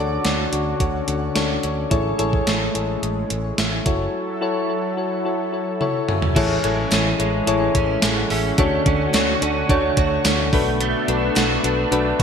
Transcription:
Already playing: D2 D3 C#4 D4 F#4 A4 C#5 D5
0.24 D2 D4 F#4 A4 C#5, snare, closed hi-hat
0.52 D2 D4 F#4 A4 C#5, closed hi-hat
0.80 D2 D4 F#4 A4 C#5, kick, closed hi-hat
1.07 D2 D4 F#4 A4 C#5, closed hi-hat
1.35 D2 D4 F#4 A4 C#5, snare, closed hi-hat
1.63 D2 D4 F#4 A4 C#5, closed hi-hat
1.90 A1 A2 G#3 A3 E4 G#4 A4 C#5, kick, closed hi-hat
2.18 A1 E4 G#4 A4 C#5, closed hi-hat
2.33 kick
2.46 A1 E4 G#4 A4 C#5, snare, closed hi-hat
2.74 A1 E4 G#4 A4 C#5, closed hi-hat
3.02 A1, closed hi-hat
3.30 A1, closed hi-hat
3.44 C#5
3.58 A1 E5, snare, closed hi-hat
3.72 G#5
3.86 F#1 F#3 E4 F#4 A4 C#5, kick, closed hi-hat
4.41 E4 F#4 A4 C#5
4.69 E4 F#4 A4 C#5
4.97 E4 F#4 A4 C#5
5.25 E4 F#4 A4 C#5
5.52 E4 F#4 A4 C#5
5.80 E4 F#4 A4 C#5 E5, high tom
6.08 E4 F#4 A4 C#5 G#5, mid tom
6.22 floor tom
6.36 A1 A2 E3 G#3 C#4 E4 G#4 A4 C#5, kick, closed hi-hat, crash
6.63 A1 G#3 E4 G#4 A4 C#5, closed hi-hat
6.91 A1 C#4 E4 G#4 A4 C#5, snare, clap, closed hi-hat, tambourine
7.19 A1 G#3 E4 G#4 A4 C#5, closed hi-hat
7.47 A1 E3 E4 G#4 A4 C#5, closed hi-hat
7.75 A1 C#4, kick, closed hi-hat
8.02 A1 G#3, snare, clap, closed hi-hat, tambourine
8.17 F#5
8.30 A1 C#4 E5, open hi-hat
8.45 C#5
8.58 D2 D3 A3 D4 F#4 A4 C#5, kick, closed hi-hat
8.86 D2 C#4 D4 F#4 A4 C#5, kick, closed hi-hat
9.13 D2 D4 F#4 A4 C#5, snare, clap, closed hi-hat, tambourine
9.41 D2 C#4 D4 F#4 A4 C#5, closed hi-hat
9.69 D2 A3 D4 F#4 A4 C#5, kick, closed hi-hat
9.97 D2 D4 F#4 A4 C#5, kick, closed hi-hat
10.25 D2 C#4 D4 F#4 A4 C#5, snare, clap, closed hi-hat, tambourine
10.52 B1 B2 A3 B3 D4 F#4 A4 B4, kick, open hi-hat
10.81 A3, closed hi-hat
11.08 B1 D4 F#4 A4 B4, closed hi-hat
11.36 B1 D4 F#4 A4 B4, snare, clap, closed hi-hat, tambourine
11.63 B1 D4 F#4 A4 B4, closed hi-hat
11.91 B1 A3 D4 F#4 A4 B4, closed hi-hat
12.20 B1 F#4, kick, closed hi-hat

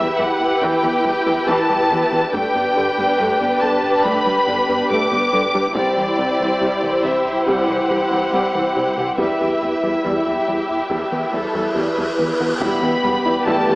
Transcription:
Already playing: E1 G3 E4 G4 B4 E5
0.19 E2 E3 G3 F#5
0.40 E2
0.61 E2 E3 G5, taiko
0.83 E2 E3 B3
1.05 E2 E3 G3
1.26 E2 E3 G3
1.47 E2 E3 A5
1.69 E2 E3 G3
1.90 E2 E3 B3
2.12 E2 E3 B3
2.33 G1 G2 G3 A3 D4 G4 B4 G5, taiko
2.55 G2 G3 B3
2.76 G2 D3 G4
2.98 G2 G3 B3
3.19 G2 G3 A3
3.40 G2 G3 B3
3.61 G2 D3 B3 A5
3.83 G2
4.04 G2 G3 A3 B5, taiko
4.26 G2 G3 D4
4.47 G2 D3 B3
4.68 G2 G3 B3
4.89 G2 G3 A3 D6
5.12 G2 G3 B3
5.33 G2 D3 G3 D4
5.54 G2 G3 D4
5.75 C2 C3 G3 E4 G4 C5 D5, taiko
5.97 C2 E3
6.18 C2 C3 C4
6.40 C2 E3
6.61 C2 C3 G3
6.82 C2 E3
7.03 C2 C3 E3 E5
7.26 C2
7.46 C2 C3 G3 F#5, taiko
7.68 C2 C3 E3 G3
7.89 C2 C3 E3
8.11 C2 E3
8.32 C2 C3 G3
8.53 C2 E3
8.76 C2 C3 G3
8.97 C2 C3 E3 G3
9.18 E1 E2 E3 G3 E4 G4 B4 E5, taiko, cymbal swell
9.40 E2 E3 G3
9.61 E2 E3 E4
9.83 E2 E3 G3
10.04 E2 E3 G3 G4
10.26 E2 E3 G3
10.47 E2 E3 G3
10.70 E2
10.90 E2 E3 G3, taiko
11.12 E2 E3 B3
11.32 E2 E3 G3 A4
11.54 E2 E3 G3
11.75 E2 E3 G3 B4
11.97 E2 E3 G3
12.19 E2 E3 B3
12.40 E2 E3 B3
12.60 E1 E2 E3 G3 B3 E4 G4 B4 B5, taiko, impact
12.83 E2 E3 G3 B3 E4, taiko low-mid
13.04 E1 E2 G3 B3
13.25 E2 G3 E4
13.46 E1 E2 E3 G3 A3 E4 A5, taiko
13.68 E2 E3 G3 B3 E4, taiko low-mid

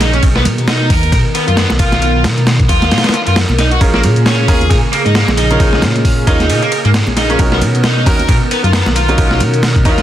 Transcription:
Already playing: A#1 C#3 A#3 G#4
0.00 D#4, snare, closed hi-hat, ride
0.13 C#4, closed hi-hat
0.23 B1 D#3 B3 A#4, kick, closed hi-hat, ride
0.36 B3, snare
0.45 B2, closed hi-hat, ride, high conga, low conga
0.58 B2, closed hi-hat
0.68 D#4, snare, closed hi-hat, ride
0.90 D#2 A#4, kick, closed hi-hat, open hi-hat, muted conga
1.03 closed hi-hat, high conga
1.12 B2 A#4, kick, closed hi-hat, ride, muted conga
1.35 B3, closed hi-hat, ride
1.48 F#2 F4, closed hi-hat
1.57 B3, snare, closed hi-hat, ride
1.70 B1, snare, muted conga, high conga
1.79 F4, kick, closed hi-hat, ride
1.92 snare, closed hi-hat, muted conga
2.02 B1, closed hi-hat, ride
2.24 B2, snare, closed hi-hat, ride, high conga, low conga
2.37 B2, closed hi-hat
2.47 snare, closed hi-hat, ride
2.60 kick, closed hi-hat
2.69 D#2 F4, kick, closed hi-hat, ride, muted conga
2.82 snare, closed hi-hat, high conga
2.91 B2, snare, closed hi-hat, ride
2.98 snare, ride
3.04 B3, snare, closed hi-hat, ride
3.09 snare, ride
3.14 F4, snare, closed hi-hat
3.27 F#2 F4, closed hi-hat, ride
3.36 snare, closed hi-hat, ride
3.49 B1, muted conga, high conga
3.59 D#4, snare, closed hi-hat, ride
3.71 F#4, closed hi-hat
3.81 A#1 C#3 A#3 C#4 F4 G#4 A#4, kick, closed hi-hat, ride
3.94 A#3, snare
4.03 A#2, closed hi-hat, ride, high conga, low conga
4.16 A#2, closed hi-hat
4.26 C#4, snare, closed hi-hat, ride
4.48 D#2 C#4 F4 G#4 A#4, kick, closed hi-hat, open hi-hat, muted conga
4.61 closed hi-hat, high conga
4.70 A#2 G#4, kick, closed hi-hat, ride, muted conga
4.92 A#3, closed hi-hat, ride
5.05 G#2 D#4, closed hi-hat
5.15 A#3, snare, closed hi-hat, ride
5.28 A#1, snare, muted conga, high conga
5.37 D#4, closed hi-hat, ride
5.50 C#4 F4 G#4 A#4, closed hi-hat, muted conga
5.60 A#1 C#4 F4 G#4 A#4, kick, closed hi-hat, ride
5.73 snare
5.82 A#2, snare, closed hi-hat, ride, high conga, low conga
5.95 A#2, closed hi-hat
6.05 kick, closed hi-hat, open hi-hat
6.27 D#2 C#4 D#4 F4 G#4 A#4, kick, closed hi-hat, ride
6.40 snare, closed hi-hat, high conga
6.50 A#2, closed hi-hat, ride
6.62 A#3, ride
6.72 A#4, closed hi-hat, ride
6.85 G#2 A#3, closed hi-hat
6.94 snare, closed hi-hat, ride
7.07 A#1, muted conga, high conga
7.17 D#4, snare, closed hi-hat, ride
7.29 C#4 F4 G#4 A#4, closed hi-hat
7.39 B1 D#3 B3 C#4 D#4 F#4 A#4, kick, closed hi-hat, ride
7.52 B3, snare
7.61 B2, closed hi-hat, ride, high conga, low conga
7.74 B2, closed hi-hat
7.84 D#4, snare, closed hi-hat, ride
8.06 D#2 C#4 D#4 F#4 A#4, kick, closed hi-hat, open hi-hat, muted conga
8.19 closed hi-hat, high conga
8.29 B2 A#4, kick, closed hi-hat, ride, muted conga
8.51 B3, closed hi-hat, ride
8.64 F#2 F4, closed hi-hat
8.73 B3, snare, closed hi-hat, ride
8.86 B1, snare, muted conga, high conga
8.96 F4, closed hi-hat, ride
9.08 C#4 D#4 F#4 A#4, closed hi-hat, muted conga
9.18 B1 C#4 D#4 F#4 A#4, kick, closed hi-hat, ride
9.31 snare
9.40 B2, closed hi-hat, ride, high conga, low conga
9.53 B2, closed hi-hat
9.63 snare, closed hi-hat, ride
9.76 kick, closed hi-hat
9.85 D#2 C#4 D#4 F4 F#4 A#4, kick, closed hi-hat, ride, muted conga
9.98 snare, closed hi-hat, high conga

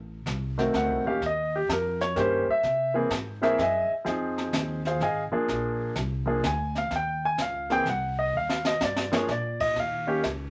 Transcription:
Already playing: A1
0.26 C2, snare, hi-hat pedal
0.58 D#3 A3 C4 F#4, snare
0.73 D2 F#5, snare
0.90 C2
1.04 A1 D#3 A#3 C#4 G4 F5
1.21 D#2, brush sweep, snare
1.26 D#5
1.56 G4
1.68 F2, snare, hi-hat pedal
1.73 A#4
2.01 C#5, snare
2.16 G2 D#3 A#3 C#4 G4, snare
2.20 C5
2.48 E5, muted upright bass stroke
2.63 C3, brush sweep, snare
2.94 E3 A#3 C4 G#4
3.10 G#2, snare, hi-hat pedal
3.42 E3 A#3 C4 E4 G#4 A#4 C5 E5, snare
3.58 F#2 G#4 D#5 E5 G#5, snare
3.90 muted upright bass stroke
4.05 F2 F3 C4 D#4 G#4, brush sweep, snare
4.38 snare
4.53 D#2, snare, hi-hat pedal
4.85 F4 G#4 C5 F5, snare
5.00 G#1 G#4 D#5 F5 G#5, snare
5.32 F3 A#3 D4 G#4, muted upright bass stroke
5.48 A#1, brush sweep, snare
5.95 C2, snare, hi-hat pedal
6.26 F3 A#3 D4 G#4
6.43 D2 G#5, snare, hi-hat pedal
6.75 F5, snare
6.90 D#2, brush sweep, snare
6.96 G5
7.25 G#5
7.38 C#2, snare, hi-hat pedal
7.42 F5
7.70 E3 A#3 C4 G#4 G5, snare
7.85 C2 F#5, snare
8.19 D#5
8.33 D#2 F5
8.49 snare
8.65 D#5, snare
8.81 G2 D5, snare, hi-hat pedal
8.96 snare
9.12 F3 A#3 D4 G#4 C#5, snare
9.28 A#2 D5, snare
9.60 D#5, kick, crash
9.76 D#2 F5, brush sweep, snare
10.07 D#3 A#3 C#4 G4
10.23 C#2, snare, hi-hat pedal

